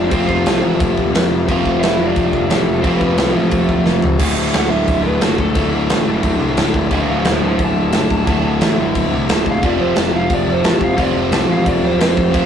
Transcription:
Already playing: picked electric bass F1, overdriven electric guitar F2 F3 A3 C4 F4
0.08 picked electric bass F1, overdriven electric guitar F2 C3, lead electric guitar C4 C5, kick, crash
0.12 overdriven electric guitar F3 A3 C4 F4
0.26 picked electric bass F1, lead electric guitar F4 F5, kick
0.46 picked electric bass C2, snare, crash
0.62 picked electric bass A1, overdriven electric guitar F2 C3 F3
0.80 picked electric bass F1, kick, crash
0.98 picked electric bass D1, kick
1.12 picked electric bass F1, overdriven electric guitar F2 C3 F3, snare, crash
1.32 picked electric bass F1
1.47 picked electric bass F1, overdriven electric guitar F2 C3 F3 A3 C4, kick, crash
1.51 overdriven electric guitar F4
1.66 picked electric bass F1, kick
1.81 picked electric bass F1, lead electric guitar E4 E5, snare, crash
1.98 picked electric bass F1, overdriven electric guitar F2 C3 F3
2.06 lead electric guitar D4 D5
2.16 picked electric bass F1, kick, crash
2.30 picked electric bass F1, lead electric guitar D5, kick
2.35 lead electric guitar D4
2.48 picked electric bass A1, overdriven electric guitar F2 C3 F3, snare, crash
2.63 lead electric guitar A4
2.67 picked electric bass F1, lead electric guitar A3
2.79 overdriven electric guitar F2, lead electric guitar C5
2.83 picked electric bass F1, overdriven electric guitar C3 F3 A3 C4 F4, lead electric guitar C4, kick, crash
2.97 lead electric guitar B4
3.01 picked electric bass F1, lead electric guitar B3, kick
3.18 picked electric bass C2, snare, crash
3.32 picked electric bass A1, overdriven electric guitar C3 F3, lead electric guitar A3 A4
3.38 overdriven electric guitar F2
3.51 picked electric bass F1, kick, crash
3.69 picked electric bass D1, kick
3.86 picked electric bass F1, overdriven electric guitar F2 C3 F3, snare
4.02 picked electric bass C#2, floor tom
4.19 picked electric bass D1, overdriven electric guitar D2 A2 D3 A3 F#4, kick, crash
4.37 picked electric bass D1
4.53 picked electric bass D1, lead electric guitar F#5, snare, crash
4.70 picked electric bass D1, overdriven electric guitar D2 A2 D3, lead electric guitar E5
4.88 picked electric bass D1, kick, crash
5.03 picked electric bass D1, lead electric guitar B4
5.21 picked electric bass F#1, overdriven electric guitar D2 A2 D3, lead electric guitar F#4, snare, crash
5.38 picked electric bass D1, lead electric guitar A4, kick
5.53 picked electric bass D1, overdriven electric guitar D2 A2 D3 A3 F#4, kick, crash
5.73 picked electric bass D1, lead electric guitar D4
5.90 picked electric bass A1, snare, crash
6.06 picked electric bass F#1, overdriven electric guitar D2 A2 D3
6.23 picked electric bass D1, kick, crash
6.39 picked electric bass C2
6.56 picked electric bass D1, overdriven electric guitar D2 A2, snare, crash
6.61 overdriven electric guitar D3
6.74 picked electric bass D1, kick
6.90 picked electric bass D1, overdriven electric guitar D2 A2 D3 A3 F#4, kick, crash
6.94 lead electric guitar A4 F5
7.08 picked electric bass D1, lead electric guitar A4 F5
7.25 picked electric bass D1, snare, crash
7.30 lead electric guitar C5 A5
7.42 picked electric bass D1, overdriven electric guitar D2 A2 D3
7.47 lead electric guitar C5 A5
7.59 picked electric bass D1, kick, crash
7.65 lead electric guitar A5
7.76 picked electric bass D1
7.92 picked electric bass F#1, overdriven electric guitar D2 A2 D3, snare, crash
8.10 picked electric bass D1, kick
8.26 picked electric bass D1, overdriven electric guitar D2 A2 D3 A3 F#4, kick, crash
8.45 picked electric bass D1
8.61 picked electric bass A1, snare, crash
8.78 picked electric bass F#1, overdriven electric guitar D2 A2 D3
8.95 picked electric bass D1, kick, crash
9.13 picked electric bass C2
9.28 picked electric bass D1, overdriven electric guitar D2 A2 D3, snare, crash
9.32 lead electric guitar A5
9.46 picked electric bass E1, kick
9.51 lead electric guitar F5
9.62 picked electric bass F1, overdriven electric guitar F2 C3 F3 A3 C4 F4, lead electric guitar D5, kick, crash
9.80 picked electric bass F1, lead electric guitar C5
9.96 picked electric bass F1, lead electric guitar A5, snare, crash
10.13 picked electric bass F1, overdriven electric guitar F2 C3 F3, lead electric guitar F5
10.30 picked electric bass F1, kick, crash
10.34 lead electric guitar D5
10.47 picked electric bass F1
10.52 lead electric guitar C5
10.63 picked electric bass A1, overdriven electric guitar F2 C3 F3, lead electric guitar A5, snare, crash
10.81 picked electric bass F1, lead electric guitar F5, kick
10.96 picked electric bass F1, overdriven electric guitar F2 C3 F3 A3 C4 F4, kick, crash
11.00 overdriven electric guitar F3, lead electric guitar D5
11.15 picked electric bass F1, lead electric guitar C5
11.31 picked electric bass C2, lead electric guitar A5, snare, crash
11.49 picked electric bass A1, overdriven electric guitar F2 C3 F3, lead electric guitar F5
11.66 picked electric bass F1, lead electric guitar D5, kick, crash
11.84 picked electric bass D1, lead electric guitar C5
11.99 picked electric bass F1, overdriven electric guitar F2 C3 F3, lead electric guitar C5, snare, crash
12.17 picked electric bass F1, kick
12.31 picked electric bass F1, overdriven electric guitar F2 C3 F3 A3 C4 F4, kick, crash
12.36 overdriven electric guitar C3 F3

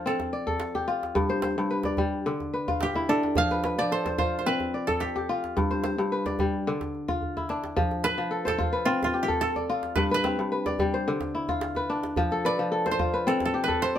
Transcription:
Already playing: kora F3 D4 F4 G4 A4 C5, koto C5 D5 E5
0.06 kora C4, koto A4
0.20 djembe slap, djembe tone
0.33 kora D5
0.47 kora A4, djembe bass
0.60 djembe slap
0.75 kora G4, djembe slap, djembe tone
0.88 kora F4
1.03 djembe slap
1.15 kora G2, djembe bass
1.29 kora C5, djembe tone
1.42 kora C5, djembe slap
1.58 kora G2
1.71 kora B4
1.83 kora D5, djembe slap, djembe tone
1.97 kora G3, djembe slap, djembe bass
2.26 kora D3
2.40 djembe tone
2.54 kora B4, djembe slap
2.68 kora F4, djembe bass
2.81 koto G4, djembe slap
2.94 kora E4, djembe slap, djembe tone
3.09 kora D4, koto A4
3.23 djembe slap
3.35 kora F3, koto F5, djembe bass
3.51 kora B4, djembe tone
3.64 kora B4, djembe slap
3.78 kora F3, koto D5
3.92 kora A4, koto C5
4.06 kora C5, djembe slap, djembe tone
4.18 kora F4, koto C5, djembe slap, djembe bass
4.39 koto C5
4.46 kora C4, koto B4
4.60 djembe tone
4.73 kora D5, djembe slap
4.87 koto A4, kora A4, djembe bass
5.00 koto G4, djembe slap
5.16 kora G4, djembe slap, djembe tone
5.29 kora F4, djembe slap
5.44 djembe slap
5.57 kora G2, djembe slap, djembe bass
5.71 kora C5, djembe tone
5.84 kora C5, djembe slap
5.98 kora G2
6.12 kora B4
6.26 kora D5, djembe slap, djembe tone
6.39 kora G3, djembe slap, djembe bass
6.53 djembe slap
6.67 kora D3, djembe slap
6.81 djembe slap, djembe tone
6.95 djembe slap
7.08 kora F4, djembe bass
7.22 djembe bass
7.37 kora E4, djembe bass
7.49 kora D4, djembe slap
7.64 djembe slap
7.76 kora F3, djembe bass
7.91 djembe tone
8.04 kora B4, koto B4, djembe slap
8.18 kora F3
8.31 kora A4
8.45 koto A4, kora C5, djembe slap, djembe tone
8.58 kora F4, djembe slap, djembe bass
8.73 kora B4
8.85 kora C4, koto F4
9.03 koto F4, djembe slap, djembe tone
9.14 kora G4
9.23 koto G4
9.28 kora A4, djembe bass
9.41 koto A4, djembe slap
9.56 kora D5, djembe slap, djembe tone
9.69 kora F4, djembe slap
9.83 djembe slap
9.96 kora G2, koto B4, djembe bass
10.10 kora B4, djembe tone
10.14 koto B4
10.24 kora C4, djembe slap
10.39 kora G2
10.52 kora B4
10.66 kora D5, djembe slap, djembe tone
10.79 kora G3, djembe slap, djembe bass
10.94 kora C5
11.08 kora D3
11.21 djembe slap, djembe tone
11.34 kora E4, djembe slap
11.48 kora F4, djembe bass
11.61 djembe slap
11.75 kora B4, djembe slap, djembe tone
11.89 kora D4, djembe slap
12.03 djembe slap
12.16 kora F3, djembe bass
12.31 kora A4, djembe tone
12.45 kora B4, koto D5
12.59 kora F3
12.72 kora A4
12.86 kora C5, djembe slap
12.91 koto C5
12.99 kora F4, djembe slap, djembe bass
13.14 kora B4
13.27 kora C4, koto A4
13.40 djembe slap, djembe tone
13.45 koto A4
13.54 kora G4, djembe slap
13.64 koto B4
13.68 kora A4, djembe bass
13.82 koto C5, djembe slap
13.96 kora D5

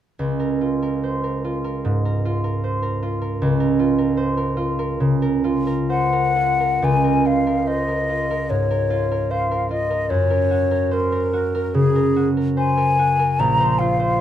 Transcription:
0.19 harp C#2
0.40 harp A#4
0.61 harp F4
0.82 harp A#4
1.04 harp C5
1.24 harp A#4
1.44 harp F4
1.64 harp A#4
1.85 harp G#2
2.05 harp A#4
2.25 harp F4
2.44 harp A#4
2.64 harp C5
2.83 harp A#4
3.03 harp F4
3.21 harp A#4
3.42 harp C#2
3.60 harp A#4
3.79 harp F4
3.98 harp A#4
4.17 harp C5
4.37 harp A#4
4.57 harp F4
4.79 harp A#4
5.00 harp C#3
5.22 harp A#4
5.44 harp F4
5.67 harp A#4
5.90 harp C5, flute F#5
6.13 harp A#4
6.36 harp F4
6.60 harp A#4
6.82 harp C#2, flute G#5
7.04 harp A#4
7.25 harp F4, flute F5
7.47 harp A#4
7.67 harp C5, flute D#5
7.88 harp A#4
8.09 harp F4
8.31 harp A#4
8.50 harp G#2, flute C#5
8.71 harp A#4
8.90 harp F4
9.11 harp A#4
9.31 harp C5, flute F5
9.51 harp A#4
9.71 harp F4, flute D#5
9.90 harp A#4
10.10 harp F#2, flute C#5
10.30 harp A#4
10.51 harp F#4
10.71 harp A#4
10.91 flute A#4, harp C5
11.12 harp A#4
11.33 harp F#4
11.55 harp A#4
11.74 harp C#3, flute G#4
11.96 harp A#4
12.16 harp F#4
12.37 harp A#4
12.57 harp C5, flute G#5
12.77 harp A#4
12.99 harp F#4
13.19 harp A#4
13.39 harp A#1, flute A#5
13.60 harp C5
13.79 harp F4, flute F5
13.99 harp C5

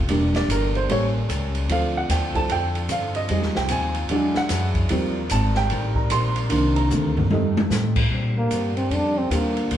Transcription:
0.08 upright bass E1, trombone section E3 A#3 D4 G4, hollow-body jazz guitar E3 D4 G4 A#4, grand piano G3 A#3 D4, ride
0.35 grand piano D5, snare, ride
0.48 upright bass G1, hollow-body jazz guitar E3 D4 G4 A#4, grand piano A#4, hi-hat pedal, ride
0.75 grand piano C5, ride
0.88 upright bass A1, trombone section G3 C#4 A4, grand piano G3 A#3 C#4 C#5, hollow-body jazz guitar A3 C#4 G4 A#4, ride
1.29 upright bass C#2, hollow-body jazz guitar A3 C#4 G4 A#4, hi-hat pedal, ride
1.55 ride
1.68 upright bass D2, hollow-body jazz guitar D3 C4 F4, grand piano F3 A3 C4 F5, trombone section F3 C4 D4 A4, ride
1.73 hollow-body jazz guitar A4
1.97 grand piano F#5
2.09 upright bass D#2, hollow-body jazz guitar D3 C4 F4 A4, grand piano G5, snare, hi-hat pedal, ride
2.35 grand piano F3 A3 C4 A5, muted upright bass stroke, kick, ride
2.49 upright bass F2, hollow-body jazz guitar D3 C4 F4 A4, grand piano G5, ride
2.75 ride
2.89 upright bass G2, hollow-body jazz guitar D3 C4 F4 A4, grand piano F5, hi-hat pedal, ride
3.15 grand piano D#5, ride
3.29 upright bass F2, hollow-body jazz guitar F3 C4 D#4 G#4, grand piano G3 G#3 D#4, trombone section D#4 F4, ride
3.42 upright bass D#2, snare
3.55 upright bass C2, grand piano G5, snare
3.69 upright bass D#2, hollow-body jazz guitar F3 C4 D#4 G#4, grand piano G#5, hi-hat pedal, ride
3.95 ride
4.09 upright bass E2, hollow-body jazz guitar E3 G#3 D4 F#4, trombone section F#3 D4 E4 G#4, grand piano F#3 G#3 D4, ride
4.34 grand piano F#5, muted upright bass stroke, snare
4.49 upright bass F#2, hollow-body jazz guitar E3 G#3 D4 F#4, snare, hi-hat pedal, ride
4.75 kick, ride
4.89 upright bass D#2, hollow-body jazz guitar D#3 A#3 C4 G4, grand piano F3 G3 C4, trombone section G3 C4 D#4 A#4, ride
5.30 upright bass G#1, hollow-body jazz guitar D#3 A#3 C4 G4, grand piano A5, hi-hat pedal, ride
5.55 grand piano G5, snare
5.70 upright bass A1, hollow-body jazz guitar D#3 A#3 C4, ride
5.74 hollow-body jazz guitar G4
5.95 grand piano A#5, kick
6.10 upright bass A#1, hollow-body jazz guitar D#3 A#3 C4 G4, grand piano C6, hi-hat pedal, ride
6.36 ride
6.49 upright bass C2, trombone section C3 D4, hollow-body jazz guitar C3 D#3 A#3, grand piano D#3 A#3 D4, ride
6.54 hollow-body jazz guitar D4
6.76 grand piano A#5, ride
6.90 upright bass D2, hollow-body jazz guitar C3 D#3 A#3 D4, hi-hat pedal, mid tom
7.17 floor tom
7.29 upright bass F2, hollow-body jazz guitar F2 D#3, trombone section F3 D#4 A4, grand piano G3 A3 D#4, high tom
7.34 hollow-body jazz guitar A3 C4
7.57 high tom
7.70 hollow-body jazz guitar F2 D#3 A3 C4, upright bass A2, snare, hi-hat pedal
7.96 kick, crash
8.10 upright bass A#2, hollow-body jazz guitar A#2 G3 C4 D4, trombone section D3 A#3 C4 G4
8.38 trombone A#3
8.50 upright bass G2, hollow-body jazz guitar A#2 G3 C4, hi-hat pedal, ride
8.54 hollow-body jazz guitar D4
8.77 trombone C4, ride
8.90 upright bass F2, hollow-body jazz guitar A#2 G3 C4, trombone D4, ride
8.94 hollow-body jazz guitar D4
9.18 trombone C4
9.30 upright bass D#2, hollow-body jazz guitar A#2 G3 C4 D4, grand piano A#3 C4 D4 F4 G4, trombone A#3, hi-hat pedal, ride
9.57 ride
9.70 upright bass D2, hollow-body jazz guitar D3 G#3 C4 F4, trombone section G#3 F4, ride

